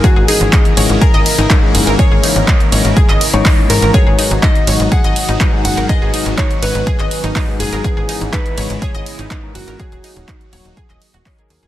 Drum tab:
RD |--x---x---x---x-|--x---x---x---x-|--x---x---x---x-|--x---x---x---x-|
HH |x-oxxxoxxxoxx-ox|x-oxxxoxxxoxo-ox|x-oxxxoxxxoxx-ox|x-oxxxoxxxoxo-ox|
CP |----x-------x---|----x----x--x---|----x-------x---|----x----x--x---|
BD |o---o---o---o---|o---o---o---o---|o---o---o---o---|o---o---o---o---|

RD |--x---x---x---x-|--x---x---x---x-|
HH |x-oxxxoxxxoxx-ox|xxoxxxoxxxoxoxox|
CP |----x-------x---|----x----x--x---|
BD |o---o---o---o---|o---o---o---o---|